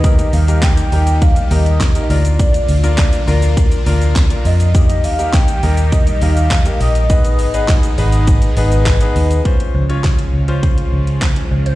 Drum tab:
HH |xxoxxxoxxxoxxxox|xxoxxxoxxxoxxxox|xxoxxxoxxxoxxxox|xxoxxxoxxxoxxxox|
SH |xxxxxxxxxxxxxxxx|xxxxxxxxxxxxxxxx|xxxxxxxxxxxxxxxx|xxxxxxxxxxxxxxxx|
CP |----x-------x---|----x-------x---|----x-------x---|----x-------x---|
SD |----o-------o---|----o-------o---|----o-------o---|----o-------o---|
BD |o---o---o---o---|o---o---o---o---|o---o---o---o---|o---o---o---o---|

HH |xx-xxx-xxx-xxx-x|
SH |----------------|
CP |----x-------x---|
SD |----o-------o---|
BD |o---o---o---o---|